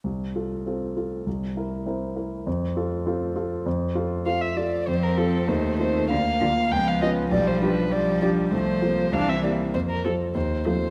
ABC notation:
X:1
M:2/4
L:1/16
Q:1/4=99
K:F
V:1 name="Violin"
z8 | z8 | z8 | z4 f e d2 |
c B A2 c2 c2 | f4 g f _e2 | d c =B2 d2 d2 | c4 f e d2 |
c B A2 c2 c2 |]
V:2 name="Grand piano"
C,,2 [FA]2 [CFA]2 [FA]2 | C,,2 [EB]2 [CEB]2 [EB]2 | F,,2 [FA]2 [CFA]2 [FA]2 | F,,2 [FA]2 [CFA]2 [FA]2 |
F,,2 [CFA]2 _E,,2 [CFA]2 | D,,2 [B,FB]2 _D,,2 [_DF_c]2 | =B,,,2 [DFG]4 [DFG]2 | C,,2 [CFA]2 C,,2 [CEG]2 |
F,,2 [CFA]2 _E,,2 [CFA]2 |]
V:3 name="Viola"
z8 | z8 | z8 | z8 |
C4 A,4 | B,4 _C4 | G,4 G,4 | A,2 B,2 D C B,2 |
z2 C2 z2 A,2 |]
V:4 name="Cello" clef=bass
z8 | z8 | z8 | z8 |
F,4 _E,4 | D,2 D,2 F,4 | F,4 F,4 | F,4 E,2 z2 |
z2 F,2 z2 F,2 |]